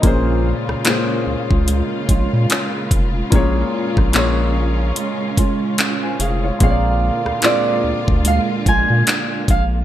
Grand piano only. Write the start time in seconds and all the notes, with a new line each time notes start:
0.02 A#2 A#3 C#4
0.06 G#4 C5
0.84 A#2 A#3 C#4 G#4
0.89 C5
3.30 A#2 A#3 C#4 G#4
3.35 C#5
4.12 A#2 A#3 C#4 G#4
4.17 C#5
6.03 C5 G#5
6.20 G#4 F5
6.44 F4 C#5
6.59 A#2 A#3 C4 G#4
6.64 C#5
6.70 D5
7.41 A#2 A#3 C4 G#4
7.46 D5